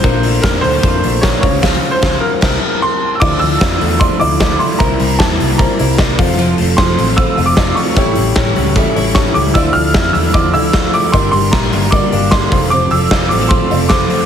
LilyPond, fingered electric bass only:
\new Staff \with { instrumentName = "Fingered electric bass" } { \clef bass \time 4/4 \key f \major \tempo 4 = 151 bes,,4 f,8 d,8 f,8 bes,,4 des,8 | des,8 r8 des,8 r8 c,8 r4. | d,8 d,8 f,8 e,8. r16 d,4 r8 | c,8 c,8 r8 c,8. r16 c,4 f,,8~ |
f,,8 f,,8 f,,8 a,,8. r16 f,,4 r8 | a,,8 a,,8 r8 cis,8. r16 a,,4 cis,8 | d,8 d,8 f,8 e,4 d,4 r8 | g,,8 g,,8 r8 g,,8. r16 g,,4 f,,8~ |
f,,8 f,,8 f,,8 a,,8. r16 f,,4 r8 | }